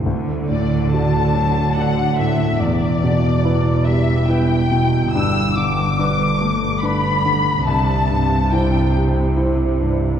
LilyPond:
<<
  \new Staff \with { instrumentName = "Violin section" } { \time 3/4 \key e \minor \tempo 4 = 71 r8 d''8 a''4 fis''8 e''8 | d''4. e''8 g''4 | e'''8 d'''4. b''4 | a''4 g''8 r4. | }
  \new Staff \with { instrumentName = "Grand piano" } { \time 3/4 \key e \minor d,8 a,8 <fis' d''>8 fis8 <fis' d''>8 a,8 | e,8 b,8 <e' b'>8 g8 <e' b'>8 b,8 | g,8 d8 <d' b'>8 a8 <d' b'>8 d8 | c,8 g,8 <e' c''>8 g8 <e' c''>8 g,8 | }
  \new Staff \with { instrumentName = "Cello section" } { \clef bass \time 3/4 \key e \minor d2. | e,2. | g,2. | c2. | }
  \new Staff \with { instrumentName = "Double bass section" } { \clef bass \time 3/4 \key e \minor d,2. | e,,2. | g,,2. | c,2. | }
>>